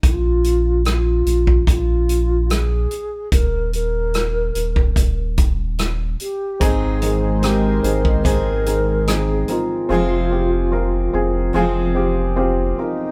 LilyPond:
<<
  \new Staff \with { instrumentName = "Analog synth pad" } { \time 4/4 \key aes \major \tempo 4 = 73 r1 | r1 | <aes c'' ees'' c'''>1 | r1 | }
  \new Staff \with { instrumentName = "Alto flute" } { \time 4/4 \key aes \major f'4 f'4 f'4 aes'4 | bes'8 bes'2 r4 g'8 | aes'4 bes'4 bes'4 aes'8 f'8~ | f'2~ f'8 r4 ees'8 | }
  \new Staff \with { instrumentName = "Felt piano" } { \time 4/4 \key aes \major r1 | r1 | <c' ees' aes'>8 <c' ees' bes'>8 <c' ees' g'>8 <c' ees' aes'>8 <c' ees' aes'>8 <c' ees' aes'>8 <c' ees' aes'>8 <c' ees' bes'>8 | <c' f' aes'>8 <c' f' g'>8 <c' f' bes'>8 <c' f' aes'>8 <c' f' aes'>8 <c' f' g'>8 <c' f' g'>8 <c' f' bes'>8 | }
  \new Staff \with { instrumentName = "Felt piano" } { \clef bass \time 4/4 \key aes \major r1 | r1 | aes,4. r2 r8 | r1 | }
  \new Staff \with { instrumentName = "Steel-string acoustic guitar" } { \clef bass \time 4/4 \key aes \major r1 | r1 | <aes, ees aes c' ees' aes'>4 <aes c' ees' aes'>4 <aes, ees aes c' ees' aes'>2 | <f, c f aes c' f'>2 <f, c f aes c' f'>2 | }
  \new Staff \with { instrumentName = "Sub bass" } { \clef bass \time 4/4 \key aes \major bes,,4. bes,,8 bes,,4. r8 | ees,,4. ees,,8 ees,,4. r8 | aes,,4. aes,,8 aes,,4. r8 | f,,4. f,,8 f,,4. r8 | }
  \new DrumStaff \with { instrumentName = "Drums" } \drummode { \time 4/4 <hh bd>8 hh8 <hh ss>8 hh16 bd16 <hh bd>8 hh8 <hh ss>8 hh8 | <hh bd>8 hh8 <hh ss>8 hh16 bd16 <hh bd>8 <hh bd>8 <hh ss>8 hh8 | <hh bd>8 hh8 <hh ss>8 hh16 bd16 <hh bd>8 hh8 <hh ss>8 hh8 | r4 r4 r4 r4 | }
>>